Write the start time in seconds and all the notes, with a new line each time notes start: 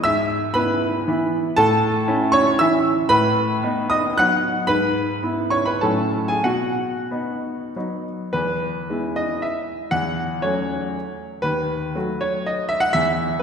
0.04 G#2 E5 E6
0.54 B3 E4 B4 B5
1.08 E3 B3 E4
1.57 A2 A4 A5
2.08 C#4 E4
2.32 C#5 C#6
2.59 E3 C#4 E4 E5 E6
3.09 A2 B4 B5
3.63 B3 D#4
3.90 D#5 D#6
4.18 F#3 B3 D#4 F#5 F#6
4.67 G#2 B4 B5
5.22 B3 E4
5.50 C#5 C#6
5.65 B4 B5
5.81 A2 F#3 C#4 E4 A4 A5
6.28 G#4 G#5
6.44 B2 F#4 F#5
7.11 B3 D#4
7.76 F#3 B3 D#4
8.33 E2 B4
8.90 G#3 B3 E4
9.16 D#5
9.42 E5
9.91 E2 F#5
10.42 F#3 A3 C#4 C#5
11.42 D#2 B4
11.95 F#3 A3 F#4
12.21 C#5
12.46 D#5
12.69 E5
12.80 F#5
12.93 E2 E5
13.39 B4